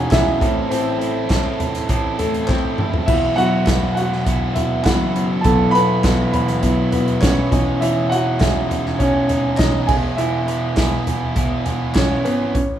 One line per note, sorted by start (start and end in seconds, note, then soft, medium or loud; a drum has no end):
0.00 0.43 E3 medium
0.00 0.11 G#3 soft
0.00 0.11 C#4 soft
0.00 0.43 C#4 soft
0.00 0.12 D#4 medium
0.00 0.43 D#4 medium
0.00 0.43 F#4 medium
0.00 0.11 G#4 medium
0.00 0.43 G#4 medium
0.00 0.43 F#5 loud
0.00 0.43 G#5 loud
0.11 0.39 E1 medium
0.11 0.41 E2 medium
0.11 0.41 E3 medium
0.11 0.42 G#3 medium
0.11 0.42 C#4 medium
0.11 0.42 D#4 medium
0.11 0.40 E4 medium
0.11 0.39 G#4 loud
0.11 0.73 E5 loud
0.11 kick loud
0.11 snare loud
0.11 clap medium
0.11 closed hi-hat medium
0.40 0.69 A1 loud
0.40 2.18 A3 medium
0.40 0.69 C4 soft
0.40 0.70 C4 soft
0.40 2.74 E4 medium
0.40 0.71 E4 medium
0.40 0.70 A4 medium
0.40 kick loud
0.40 closed hi-hat medium
0.70 1.26 A1 medium
0.70 1.00 A2 medium
0.70 1.01 A3 medium
0.70 1.85 C4 medium
0.70 1.01 C4 medium
0.70 1.00 E4 medium
0.70 0.98 A4 medium
0.70 1.85 C5 medium
0.70 closed hi-hat medium
0.99 1.29 C4 soft
0.99 1.30 E4 medium
0.99 1.30 A4 medium
0.99 closed hi-hat medium
1.29 1.85 A1 medium
1.29 1.89 A2 medium
1.29 1.87 A3 medium
1.29 1.88 C4 medium
1.29 1.90 E4 medium
1.29 1.90 A4 medium
1.29 kick loud
1.29 snare medium
1.29 clap medium
1.29 closed hi-hat medium
1.60 closed hi-hat medium
1.60 floor tom medium
1.75 snare soft
1.75 closed hi-hat medium
1.88 2.74 A1 loud
1.88 2.18 A3 medium
1.88 2.19 C4 medium
1.88 2.18 E4 medium
1.88 2.17 A4 medium
1.88 kick medium
1.88 closed hi-hat medium
2.18 2.47 A3 medium
2.18 2.48 C4 soft
2.18 2.49 E4 soft
2.18 2.48 A4 medium
2.18 2.49 A4 medium
2.18 closed hi-hat medium
2.18 floor tom medium
2.34 closed hi-hat medium
2.47 2.78 A2 medium
2.47 2.78 A3 medium
2.47 3.04 C4 medium
2.47 2.79 C4 medium
2.47 2.78 E4 medium
2.47 2.76 A4 medium
2.47 3.09 C5 medium
2.47 kick loud
2.47 snare medium
2.47 clap medium
2.77 3.06 F#1 medium
2.77 3.08 C4 soft
2.77 3.08 E4 soft
2.77 3.07 A4 soft
2.77 mid tom medium
2.93 floor tom medium
3.06 3.63 E1 medium
3.06 3.37 E2 medium
3.06 3.37 E3 medium
3.06 3.37 F#3 medium
3.06 3.38 B3 medium
3.06 3.35 E4 medium
3.06 3.37 F#4 medium
3.06 3.38 E5 medium
3.06 kick loud
3.06 crash medium
3.36 4.22 F#3 medium
3.36 3.66 F#3 soft
3.36 4.22 B3 soft
3.36 3.67 B3 soft
3.36 3.67 E4 medium
3.36 4.22 E4 medium
3.36 3.93 F#4 medium
3.36 3.67 F#4 medium
3.36 3.93 F#5 loud
3.36 closed hi-hat medium
3.66 4.22 E1 loud
3.66 4.26 E2 medium
3.66 4.28 E3 medium
3.66 4.24 F#3 medium
3.66 4.25 B3 medium
3.66 4.28 E4 medium
3.66 4.27 F#4 medium
3.66 kick loud
3.66 snare loud
3.66 clap medium
3.66 closed hi-hat medium
3.95 4.04 F#4 medium
3.95 4.02 F#5 medium
3.95 closed hi-hat medium
4.12 snare soft
4.25 4.82 E1 medium
4.25 4.55 F#3 medium
4.25 4.56 B3 medium
4.25 4.54 E4 medium
4.25 4.56 F#4 medium
4.25 kick medium
4.25 closed hi-hat medium
4.54 4.85 B3 soft
4.54 4.85 E4 medium
4.54 4.63 E4 medium
4.54 4.86 F#4 medium
4.54 4.61 E5 medium
4.54 closed hi-hat medium
4.54 floor tom medium
4.59 4.85 F#3 soft
4.83 5.13 F#1 medium
4.83 5.15 E2 medium
4.83 5.15 E3 medium
4.83 5.12 F#3 soft
4.83 5.15 F#3 medium
4.83 5.12 B3 soft
4.83 5.15 B3 medium
4.83 5.12 E4 medium
4.83 5.41 F#4 medium
4.83 5.15 F#4 medium
4.83 5.45 F#5 medium
4.83 kick loud
4.83 snare loud
4.83 clap medium
4.83 closed hi-hat medium
4.87 5.13 E4 medium
5.14 5.43 F#1 medium
5.14 5.44 F#3 soft
5.14 5.44 B3 medium
5.14 5.44 E4 medium
5.14 5.45 F#4 medium
5.14 closed hi-hat medium
5.41 6.00 E1 loud
5.41 5.74 E2 medium
5.41 5.74 E3 medium
5.41 5.84 F#3 medium
5.41 5.75 F#3 medium
5.41 5.84 B3 soft
5.41 5.84 E4 medium
5.41 5.52 A4 medium
5.41 5.48 A5 medium
5.41 kick loud
5.41 closed hi-hat medium
5.46 5.75 B3 medium
5.46 5.72 E4 medium
5.46 5.74 F#4 medium
5.71 6.04 E4 medium
5.71 6.04 F#4 medium
5.71 6.30 B4 medium
5.71 6.30 B5 loud
5.71 closed hi-hat medium
5.76 6.03 F#3 soft
5.76 6.04 B3 soft
6.03 6.59 E1 loud
6.03 6.63 E2 medium
6.03 6.65 E3 medium
6.03 6.61 F#3 medium
6.03 6.62 B3 medium
6.03 6.65 E4 medium
6.03 6.63 F#4 medium
6.03 kick loud
6.03 snare medium
6.03 clap medium
6.03 closed hi-hat medium
6.31 6.61 B4 medium
6.31 6.60 B5 medium
6.31 closed hi-hat medium
6.31 floor tom medium
6.48 snare soft
6.48 closed hi-hat medium
6.62 7.48 E1 loud
6.62 6.92 F#3 medium
6.62 6.90 F#3 soft
6.62 6.90 B3 soft
6.62 6.93 B3 medium
6.62 6.90 E4 medium
6.62 6.91 E4 medium
6.62 6.92 F#4 medium
6.62 kick medium
6.62 closed hi-hat medium
6.92 7.22 F#3 medium
6.92 7.00 B3 medium
6.92 7.22 B3 medium
6.92 7.22 E4 medium
6.92 7.23 F#4 medium
6.92 6.98 B4 medium
6.92 closed hi-hat medium
6.92 floor tom medium
7.08 closed hi-hat soft
7.21 7.52 E2 medium
7.21 7.52 E3 medium
7.21 7.52 F#3 medium
7.21 7.52 B3 medium
7.21 7.51 C#4 medium
7.21 7.51 E4 medium
7.21 7.52 F#4 medium
7.21 7.83 C#5 medium
7.21 kick loud
7.21 snare loud
7.21 clap medium
7.21 closed hi-hat medium
7.51 8.37 E1 loud
7.51 9.84 E3 medium
7.51 7.80 G#3 soft
7.51 8.99 C#4 soft
7.51 7.81 C#4 medium
7.51 7.81 D#4 soft
7.51 7.81 G#4 medium
7.51 9.56 D#5 medium
7.51 kick loud
7.51 closed hi-hat medium
7.80 8.11 E2 medium
7.80 8.11 E3 medium
7.80 8.11 G#3 medium
7.80 8.11 C#4 medium
7.80 8.10 D#4 medium
7.80 8.10 E4 medium
7.80 8.08 G#4 medium
7.80 8.11 E5 medium
7.80 closed hi-hat medium
8.09 8.39 G#3 soft
8.09 8.40 C#4 medium
8.09 8.40 D#4 medium
8.09 8.39 F#4 medium
8.09 8.40 G#4 medium
8.09 8.41 F#5 loud
8.09 closed hi-hat medium
8.39 8.96 E1 medium
8.39 8.99 E2 medium
8.39 9.04 E3 medium
8.39 8.98 G#3 medium
8.39 8.99 C#4 medium
8.39 9.00 D#4 medium
8.39 8.96 G#4 medium
8.39 9.02 G#4 medium
8.39 9.01 E5 medium
8.39 kick loud
8.39 snare loud
8.39 clap medium
8.39 closed hi-hat medium
8.71 closed hi-hat medium
8.71 floor tom medium
8.86 snare soft
8.99 9.55 E1 loud
8.99 9.29 G#3 medium
8.99 9.29 C#4 medium
8.99 9.55 C#4 medium
8.99 9.28 D#4 medium
8.99 9.27 G#4 medium
8.99 9.60 C#5 medium
8.99 kick medium
8.99 closed hi-hat medium
9.28 9.58 G#3 soft
9.28 9.59 C#4 soft
9.28 9.59 D#4 medium
9.28 9.58 G#4 medium
9.28 closed hi-hat medium
9.28 floor tom medium
9.57 9.87 E1 medium
9.57 9.88 E2 medium
9.57 9.89 E3 medium
9.57 9.89 G#3 medium
9.57 9.89 C#4 medium
9.57 9.87 D#4 medium
9.57 9.88 D#4 medium
9.57 9.86 G#4 medium
9.57 9.89 D#5 loud
9.57 kick loud
9.57 snare loud
9.57 clap medium
9.57 closed hi-hat medium
9.87 10.16 E1 medium
9.87 10.17 B3 soft
9.87 10.18 E4 medium
9.87 10.18 G#4 medium
9.87 9.96 G#4 medium
9.87 9.94 G#5 medium
9.87 kick loud
9.87 crash medium
9.91 10.17 G#3 soft
10.16 10.73 E1 loud
10.16 10.47 E2 medium
10.16 10.48 E3 medium
10.16 10.48 G#3 medium
10.16 10.48 B3 medium
10.16 10.76 E4 medium
10.16 10.47 E4 medium
10.16 10.45 G#4 medium
10.16 11.91 E5 medium
10.16 closed hi-hat medium
10.47 10.76 G#3 soft
10.47 10.76 B3 medium
10.47 10.77 E4 medium
10.47 10.77 G#4 medium
10.47 closed hi-hat medium
10.76 11.36 E2 medium
10.76 11.95 E3 medium
10.76 12.51 G#3 soft
10.76 11.34 G#3 medium
10.76 12.24 B3 soft
10.76 11.36 B3 medium
10.76 11.37 E4 medium
10.76 12.51 E4 soft
10.76 11.37 G#4 medium
10.76 kick loud
10.76 snare loud
10.76 clap medium
10.76 closed hi-hat medium
11.07 closed hi-hat medium
11.07 floor tom medium
11.35 12.21 E1 loud
11.35 11.65 G#3 medium
11.35 11.66 B3 medium
11.35 11.65 E4 medium
11.35 11.63 G#4 medium
11.35 kick loud
11.35 closed hi-hat medium
11.64 11.94 G#3 soft
11.64 11.95 B3 soft
11.64 11.95 E4 medium
11.64 11.95 G#4 medium
11.64 closed hi-hat medium
11.64 floor tom medium
11.95 12.25 E2 medium
11.95 12.25 E3 medium
11.95 12.25 G#3 medium
11.95 12.25 B3 medium
11.95 12.02 C#4 medium
11.95 12.24 E4 medium
11.95 12.23 G#4 medium
11.95 12.02 C#5 medium
11.95 kick loud
11.95 snare loud
11.95 clap medium
11.95 closed hi-hat medium
12.24 12.53 G#1 medium
12.24 12.56 G#3 soft
12.24 12.53 B3 medium
12.24 12.55 B3 medium
12.24 12.55 E4 medium
12.24 12.54 G#4 medium
12.24 12.55 B4 medium
12.24 closed hi-hat medium
12.54 12.79 A1 medium
12.54 12.62 C#4 medium
12.54 12.61 C#5 medium
12.54 kick loud
12.54 closed hi-hat medium